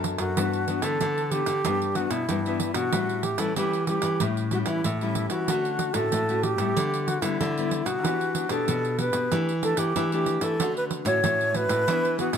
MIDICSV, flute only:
0, 0, Header, 1, 2, 480
1, 0, Start_track
1, 0, Key_signature, 2, "major"
1, 0, Tempo, 639659
1, 277, Time_signature, 4, 2, 24, 8
1, 9287, End_track
2, 0, Start_track
2, 0, Title_t, "Flute"
2, 0, Program_c, 0, 73
2, 139, Note_on_c, 0, 66, 88
2, 622, Note_on_c, 0, 69, 87
2, 633, Note_off_c, 0, 66, 0
2, 987, Note_on_c, 0, 67, 93
2, 998, Note_off_c, 0, 69, 0
2, 1470, Note_on_c, 0, 66, 88
2, 1481, Note_off_c, 0, 67, 0
2, 1584, Note_on_c, 0, 64, 86
2, 1596, Note_off_c, 0, 66, 0
2, 2056, Note_off_c, 0, 64, 0
2, 2060, Note_on_c, 0, 66, 93
2, 2429, Note_on_c, 0, 67, 80
2, 2440, Note_off_c, 0, 66, 0
2, 2545, Note_on_c, 0, 69, 84
2, 2556, Note_off_c, 0, 67, 0
2, 2670, Note_off_c, 0, 69, 0
2, 2680, Note_on_c, 0, 67, 85
2, 2901, Note_off_c, 0, 67, 0
2, 2912, Note_on_c, 0, 67, 83
2, 3171, Note_off_c, 0, 67, 0
2, 3394, Note_on_c, 0, 66, 86
2, 3439, Note_off_c, 0, 66, 0
2, 3503, Note_on_c, 0, 64, 81
2, 3732, Note_off_c, 0, 64, 0
2, 3760, Note_on_c, 0, 64, 83
2, 3970, Note_off_c, 0, 64, 0
2, 3975, Note_on_c, 0, 66, 83
2, 4453, Note_on_c, 0, 69, 96
2, 4465, Note_off_c, 0, 66, 0
2, 4826, Note_on_c, 0, 67, 95
2, 4837, Note_off_c, 0, 69, 0
2, 5308, Note_on_c, 0, 66, 87
2, 5319, Note_off_c, 0, 67, 0
2, 5417, Note_on_c, 0, 64, 84
2, 5428, Note_off_c, 0, 66, 0
2, 5899, Note_on_c, 0, 66, 95
2, 5910, Note_off_c, 0, 64, 0
2, 6385, Note_on_c, 0, 69, 88
2, 6397, Note_off_c, 0, 66, 0
2, 6750, Note_off_c, 0, 69, 0
2, 6753, Note_on_c, 0, 71, 88
2, 7011, Note_off_c, 0, 71, 0
2, 7232, Note_on_c, 0, 69, 100
2, 7345, Note_on_c, 0, 67, 93
2, 7356, Note_off_c, 0, 69, 0
2, 7589, Note_off_c, 0, 67, 0
2, 7606, Note_on_c, 0, 67, 84
2, 7826, Note_on_c, 0, 69, 84
2, 7837, Note_off_c, 0, 67, 0
2, 8070, Note_off_c, 0, 69, 0
2, 8083, Note_on_c, 0, 71, 88
2, 8136, Note_off_c, 0, 71, 0
2, 8302, Note_on_c, 0, 73, 99
2, 8676, Note_on_c, 0, 71, 115
2, 8687, Note_off_c, 0, 73, 0
2, 9147, Note_off_c, 0, 71, 0
2, 9152, Note_on_c, 0, 66, 85
2, 9264, Note_off_c, 0, 66, 0
2, 9287, End_track
0, 0, End_of_file